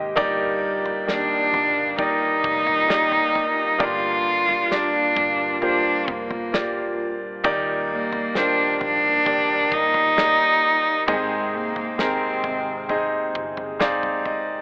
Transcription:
0.00 0.14 G#1 medium
0.00 0.13 C3 medium
0.00 0.13 D#3 medium
0.00 0.13 G#3 medium
0.00 0.19 G#3 medium
0.00 0.18 C4 medium
0.00 0.16 D#4 medium
0.00 0.17 G4 medium
0.00 3.76 G4 medium
0.00 0.37 D#5 medium
0.00 0.19 F5 medium
0.00 0.18 G5 medium
0.16 1.49 G1 medium
0.16 1.49 G2 medium
0.16 11.04 A#2 medium
0.16 1.49 G3 medium
0.16 7.40 G3 medium
0.16 1.03 A#3 loud
0.16 7.40 A#3 medium
0.16 1.03 D#4 loud
0.16 1.03 G4 loud
0.16 1.03 D5 loud
0.16 kick loud
0.16 floor tom loud
0.86 floor tom medium
1.07 1.94 D#3 medium
1.07 1.94 A#3 medium
1.07 1.95 D4 medium
1.07 1.95 G4 medium
1.07 1.95 D5 medium
1.07 snare medium
1.52 2.40 G1 medium
1.52 floor tom medium
1.97 2.84 A#3 medium
1.97 2.85 D#4 medium
1.97 3.85 D#4 medium
1.97 2.85 G4 medium
1.97 2.85 D5 medium
1.97 kick medium
1.97 floor tom medium
2.44 3.31 F1 medium
2.44 kick medium
2.67 floor tom medium
2.88 3.75 A#3 medium
2.88 3.75 D#4 medium
2.88 3.76 G4 medium
2.88 3.76 D5 medium
2.88 snare loud
3.12 floor tom medium
3.35 floor tom medium
3.78 5.13 G1 loud
3.78 5.12 G2 medium
3.78 5.12 D3 medium
3.78 4.66 A#3 medium
3.78 4.66 F4 medium
3.78 7.41 F4 medium
3.78 4.66 G4 medium
3.78 4.67 D5 loud
3.78 kick loud
3.78 floor tom loud
3.83 4.75 F4 loud
4.49 floor tom medium
4.70 5.57 A#3 medium
4.70 5.57 F4 medium
4.70 5.58 G4 medium
4.70 5.58 D5 medium
4.70 snare medium
4.74 5.64 D4 medium
5.16 6.03 G1 medium
5.16 kick medium
5.16 floor tom medium
5.61 6.48 A#3 medium
5.61 6.13 D4 medium
5.61 6.48 F4 medium
5.61 6.49 G4 medium
5.61 6.49 C5 medium
5.61 floor tom medium
6.08 7.40 F1 medium
6.08 7.00 A#3 medium
6.08 kick medium
6.31 floor tom medium
6.52 7.39 A#3 medium
6.52 7.39 F4 medium
6.52 7.40 G4 medium
6.52 7.40 D5 medium
6.52 snare loud
7.44 8.76 D#2 medium
7.44 8.76 A#2 medium
7.44 11.05 G3 medium
7.44 8.30 A#3 loud
7.44 11.05 A#3 medium
7.44 8.30 D#4 medium
7.44 8.31 G4 loud
7.44 8.31 D5 loud
7.44 kick loud
7.44 floor tom loud
7.92 8.38 A#3 medium
8.13 floor tom medium
8.34 9.21 D#3 medium
8.34 9.21 A#3 medium
8.34 8.81 D4 medium
8.34 8.42 F4 soft
8.34 9.22 C5 medium
8.34 snare medium
8.42 9.25 G4 medium
8.80 9.67 A#1 medium
8.80 9.75 D4 loud
8.80 floor tom medium
9.25 10.12 D#3 medium
9.25 10.12 A#3 medium
9.25 10.12 G4 medium
9.25 10.13 D5 medium
9.25 kick medium
9.25 floor tom medium
9.72 10.59 G1 loud
9.72 11.09 D#4 loud
9.72 kick medium
9.94 floor tom medium
10.16 11.03 A#3 medium
10.16 11.03 D#4 medium
10.16 11.03 G4 medium
10.16 11.04 D5 medium
10.16 snare loud
11.07 12.40 G#1 medium
11.07 12.40 G#2 medium
11.07 14.62 C3 medium
11.07 12.40 D#3 medium
11.07 14.62 G#3 medium
11.07 11.58 G#3 medium
11.07 11.94 C4 medium
11.07 11.94 D#4 medium
11.07 11.94 G#4 medium
11.07 11.95 D#5 loud
11.07 kick medium
11.07 floor tom loud
11.57 12.03 A#3 medium
11.76 floor tom medium
11.98 12.85 C4 medium
11.98 12.91 C4 medium
11.98 12.85 D#4 medium
11.98 12.85 G#4 medium
11.98 12.86 A#4 medium
11.98 snare medium
12.44 13.31 G#1 medium
12.44 floor tom medium
12.89 13.76 C4 medium
12.89 13.76 D#4 medium
12.89 13.76 G#4 medium
12.89 13.76 D#5 medium
12.89 floor tom medium
13.35 14.62 G1 loud
13.35 kick medium
13.57 floor tom medium
13.79 14.62 C4 medium
13.79 14.62 D#4 medium
13.79 14.62 G#4 medium
13.79 14.62 D5 medium
13.79 14.23 F5 medium
13.79 snare loud
14.03 floor tom medium
14.26 14.62 D#5 medium
14.26 floor tom medium

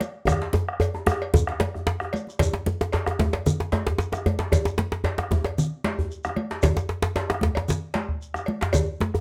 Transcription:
0.00 bombo rim soft
0.00 cowbell soft
0.00 high conga medium
0.00 shekere soft
0.27 bombo rim loud
0.27 bombo low medium
0.27 cowbell medium
0.27 djembe tone loud
0.27 high conga soft
0.27 low conga medium
0.27 djembe bass medium
0.27 shekere medium
0.41 bombo rim soft
0.41 djembe slap medium
0.41 high conga soft
0.53 high conga medium
0.53 djembe tone loud
0.69 bombo rim medium
0.80 cowbell medium
0.80 djembe tone loud
0.80 high conga soft
0.80 shekere soft
0.94 high conga soft
0.94 djembe tone medium
1.06 bombo rim loud
1.06 high conga medium
1.06 djembe tone medium
1.06 djembe bass medium
1.06 shekere soft
1.22 cowbell soft
1.34 bombo low loud
1.34 high conga soft
1.34 djembe tone loud
1.34 low conga medium
1.34 shekere medium
1.47 bombo rim medium
1.47 djembe slap medium
1.60 cowbell soft
1.60 djembe slap loud
1.60 high conga medium
1.74 bombo rim soft
1.74 djembe slap soft
1.74 djembe bass medium
1.87 bombo rim soft
1.87 djembe slap loud
2.00 bombo rim medium
2.00 djembe tone medium
2.13 bombo rim soft
2.13 cowbell medium
2.13 djembe slap soft
2.13 high conga medium
2.13 shekere soft
2.27 djembe slap soft
2.27 high conga soft
2.27 shekere soft
2.39 bombo low loud
2.39 cowbell medium
2.39 djembe slap medium
2.39 low conga medium
2.39 djembe bass medium
2.39 shekere medium
2.54 djembe slap medium
2.54 high conga soft
2.66 high conga medium
2.66 djembe tone medium
2.81 djembe slap medium
2.92 cowbell soft
2.92 djembe slap medium
2.92 djembe tone medium
3.06 bombo rim medium
3.06 djembe slap medium
3.06 djembe tone medium
3.06 high conga soft
3.19 bombo low loud
3.19 djembe slap soft
3.19 djembe slap loud
3.19 high conga medium
3.19 djembe bass medium
3.33 bombo rim soft
3.33 cowbell soft
3.33 djembe slap medium
3.46 bombo rim soft
3.46 djembe tone medium
3.46 low conga medium
3.46 shekere medium
3.60 djembe slap medium
3.72 cowbell soft
3.72 djembe slap medium
3.72 djembe tone medium
3.72 high conga medium
3.86 bombo low medium
3.86 djembe slap medium
3.86 djembe bass medium
3.98 djembe slap medium
3.98 shekere soft
4.12 bombo rim medium
4.12 djembe slap medium
4.12 djembe tone medium
4.12 shekere soft
4.26 cowbell soft
4.26 djembe tone medium
4.26 high conga medium
4.39 djembe slap medium
4.39 high conga soft
4.52 bombo low medium
4.52 cowbell medium
4.52 djembe tone medium
4.52 djembe bass medium
4.52 low conga medium
4.52 shekere medium
4.65 djembe slap medium
4.65 high conga soft
4.65 shekere soft
4.78 djembe slap loud
4.78 high conga medium
4.92 djembe slap medium
5.04 cowbell soft
5.04 djembe slap medium
5.04 djembe tone medium
5.18 bombo rim medium
5.18 djembe slap medium
5.18 djembe tone medium
5.18 high conga soft
5.31 bombo low medium
5.31 djembe slap soft
5.31 djembe tone medium
5.31 high conga medium
5.31 djembe bass medium
5.44 bombo rim soft
5.44 cowbell soft
5.44 djembe slap medium
5.58 bombo rim soft
5.58 low conga medium
5.58 shekere medium
5.84 cowbell soft
5.84 djembe slap medium
5.84 high conga medium
5.98 bombo low medium
5.98 djembe bass medium
6.11 shekere soft
6.24 bombo rim medium
6.24 djembe tone medium
6.24 shekere soft
6.36 cowbell soft
6.36 high conga medium
6.50 djembe slap medium
6.50 high conga soft
6.63 bombo low medium
6.63 cowbell medium
6.63 djembe slap loud
6.63 low conga medium
6.63 djembe bass medium
6.63 shekere soft
6.77 djembe slap medium
6.77 shekere soft
6.89 djembe slap medium
7.02 djembe slap loud
7.16 cowbell soft
7.16 djembe slap medium
7.29 bombo rim medium
7.29 djembe slap medium
7.29 high conga soft
7.29 djembe tone medium
7.41 bombo low medium
7.41 djembe slap soft
7.41 djembe slap medium
7.41 high conga medium
7.55 bombo rim soft
7.55 cowbell soft
7.55 djembe slap medium
7.68 bombo rim soft
7.68 djembe slap medium
7.68 low conga medium
7.68 shekere medium
7.94 cowbell soft
7.94 djembe slap medium
7.94 high conga medium
8.09 bombo low medium
8.22 shekere soft
8.34 bombo rim medium
8.34 djembe tone medium
8.34 shekere soft
8.46 cowbell soft
8.46 high conga medium
8.61 djembe slap medium
8.61 djembe slap loud
8.61 high conga soft
8.73 bombo low loud
8.73 cowbell medium
8.73 djembe tone medium
8.73 djembe bass medium
8.73 low conga medium
8.73 shekere medium
9.00 djembe slap medium
9.00 high conga medium
9.14 bombo rim soft
9.14 djembe tone medium

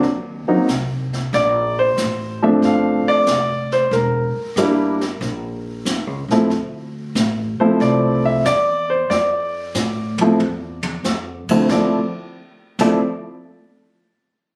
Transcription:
0.03 0.45 D#2 medium
0.03 brush sweep soft
0.03 kick soft
0.03 snare soft
0.47 0.66 F#3 medium
0.47 0.66 A#3 medium
0.47 0.67 C4 medium
0.47 0.67 D#4 medium
0.47 muted upright bass stroke soft
0.68 1.31 C2 medium
0.68 kick soft
0.68 snare medium
0.68 hi-hat pedal medium
1.13 snare soft
1.33 1.96 A#1 medium
1.33 1.80 D5 medium
1.33 brush sweep soft
1.33 kick soft
1.33 snare soft
1.79 2.45 C5 medium
1.97 2.60 A1 medium
1.97 kick soft
1.97 snare medium
1.97 hi-hat pedal medium
2.42 3.23 F3 medium
2.42 3.24 A3 medium
2.42 3.24 C4 medium
2.42 3.24 D4 medium
2.42 2.49 E5 medium
2.62 3.04 G1 medium
2.62 3.10 F5 medium
2.62 brush sweep soft
2.62 kick soft
2.62 snare soft
3.06 3.74 D5 loud
3.06 muted upright bass stroke soft
3.27 3.90 F1 medium
3.27 kick soft
3.27 snare medium
3.27 hi-hat pedal medium
3.72 3.93 C5 medium
3.72 snare soft
3.91 4.33 E1 medium
3.91 6.27 A#4 medium
3.91 brush sweep soft
3.91 kick soft
3.91 snare soft
4.35 muted upright bass stroke soft
4.56 5.19 G1 medium
4.56 4.97 G3 medium
4.56 4.97 A#3 medium
4.56 4.97 D4 medium
4.56 4.98 E4 medium
4.56 kick soft
4.56 snare medium
4.56 hi-hat pedal medium
5.01 snare soft
5.21 5.84 A#1 medium
5.21 brush sweep soft
5.21 kick soft
5.21 snare soft
5.85 6.07 D#2 medium
5.85 kick soft
5.85 snare medium
5.85 hi-hat pedal medium
6.07 6.28 C#2 medium
6.28 6.49 A#1 medium
6.28 6.49 F3 medium
6.28 6.50 A3 medium
6.28 6.50 C4 medium
6.28 6.50 E4 medium
6.28 snare soft
6.50 7.13 D2 medium
6.50 brush sweep soft
6.50 snare soft
7.15 7.57 A1 medium
7.15 kick soft
7.15 snare medium
7.15 hi-hat pedal medium
7.59 8.42 F3 medium
7.59 8.42 A3 medium
7.59 8.42 C4 medium
7.59 8.42 E4 medium
7.59 7.81 C5 medium
7.59 muted upright bass stroke soft
7.80 8.43 C2 medium
7.80 8.22 D5 medium
7.80 brush sweep soft
7.80 kick soft
7.80 snare soft
8.25 8.46 E5 medium
8.45 9.08 E2 medium
8.45 8.91 D5 loud
8.45 kick soft
8.45 snare medium
8.45 hi-hat pedal medium
8.90 9.11 C5 medium
9.10 9.73 F2 medium
9.10 11.45 D5 medium
9.10 brush sweep medium
9.10 kick soft
9.10 snare soft
9.75 10.38 A2 medium
9.75 snare soft
9.75 hi-hat pedal medium
10.18 10.39 F3 medium
10.18 10.39 A3 medium
10.18 10.39 C4 medium
10.18 10.39 E4 medium
10.18 high tom medium
10.40 11.03 E2 medium
10.40 high tom medium
10.83 high tom medium
11.04 11.47 F2 medium
11.04 snare medium
11.04 hi-hat pedal soft
11.49 11.68 D2 medium
11.49 11.69 F3 medium
11.49 11.68 A3 soft
11.49 11.69 C4 medium
11.49 11.69 E4 medium
11.49 muted upright bass stroke soft
11.49 kick medium
11.49 crash medium
11.69 11.94 D2 medium
11.69 11.97 F3 medium
11.69 11.97 A3 medium
11.69 11.98 C4 medium
11.69 11.98 E4 medium
11.69 11.95 D5 medium
11.69 kick medium
11.69 snare medium
12.79 12.98 D2 medium
12.79 12.99 F3 medium
12.79 12.98 A3 medium
12.79 12.99 C4 medium
12.79 12.99 E4 medium
12.79 12.99 D5 medium
12.79 kick medium
12.79 snare medium
12.79 crash medium

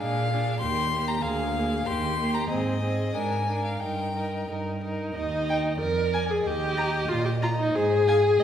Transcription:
0.00 0.55 A#2 soft
0.00 0.31 D4 soft
0.00 0.31 G#4 soft
0.00 0.59 F5 medium
0.32 0.62 D4 soft
0.32 0.61 G#4 soft
0.60 1.17 D#2 soft
0.60 0.93 A#3 soft
0.60 0.93 G4 soft
0.60 1.09 C6 medium
0.94 1.24 A#3 soft
0.94 1.23 G4 soft
1.08 1.24 A#5 medium
1.23 1.80 D2 medium
1.23 1.56 A#3 soft
1.23 1.55 G#4 medium
1.23 1.87 F5 medium
1.56 1.87 A#3 soft
1.56 1.87 G#4 soft
1.86 2.43 D#2 medium
1.86 2.19 A#3 soft
1.86 2.19 G4 soft
1.86 2.36 C6 medium
2.20 2.50 A#3 soft
2.20 2.48 G4 soft
2.34 2.48 A#5 medium
2.49 3.08 G#2 medium
2.49 2.82 C4 soft
2.49 2.81 G#4 medium
2.49 3.16 D#5 medium
2.83 3.15 C4 soft
2.83 3.15 G#4 soft
3.15 3.74 G#2 soft
3.15 3.47 D4 soft
3.15 3.48 A#4 soft
3.15 3.64 G#5 medium
3.48 3.81 D4 soft
3.48 3.81 A#4 soft
3.65 3.82 F5 soft
3.80 4.41 G2 soft
3.80 4.14 D#4 soft
3.80 4.15 A#4 soft
3.80 4.48 G5 soft
4.15 4.48 D#4 soft
4.15 4.48 A#4 soft
4.49 5.08 G2 soft
4.49 4.81 D#4 soft
4.49 4.83 A#4 soft
4.82 5.14 D#4 soft
4.82 5.15 A#4 soft
5.15 5.69 D#2 soft
5.15 5.76 D#4 medium
5.15 5.76 D#5 soft
5.50 5.64 G5 soft
5.79 6.34 F2 soft
5.79 6.32 A#4 medium
5.79 6.43 D5 soft
6.14 6.28 G#5 soft
6.30 6.48 G#4 medium
6.45 6.98 D#2 medium
6.45 7.10 G4 medium
6.45 7.72 D#5 medium
6.77 6.92 A#5 soft
7.09 7.64 A#2 medium
7.09 7.25 F4 medium
7.25 7.32 G4 soft
7.42 7.49 F4 medium
7.42 7.58 A#5 soft
7.60 7.77 D#4 medium
7.74 8.28 G#2 medium
7.74 8.42 G#4 medium
7.74 8.06 C5 soft
8.07 8.15 F5 medium
8.07 8.23 G#5 medium
8.38 8.44 A#2 medium
8.38 8.44 D#5 medium
8.38 8.44 G5 soft

